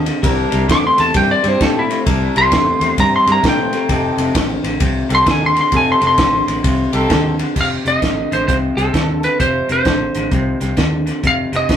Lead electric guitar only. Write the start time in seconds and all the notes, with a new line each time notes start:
0.72 D6
0.87 C6
1.00 A5
1.17 G5
1.31 D5
1.48 C5
1.62 A4
1.79 E4
2.38 C6
3.00 A#5
3.16 C6
3.32 A#5
3.49 G5
5.15 C6
5.31 G#5
5.46 C6
5.61 C6
5.76 G#5
5.92 C6
6.07 C6
7.61 F5
7.88 D#5
8.33 C5
8.48 C5
8.77 A4
9.24 B4
9.40 C5
9.72 C5
11.27 F5
11.56 D#5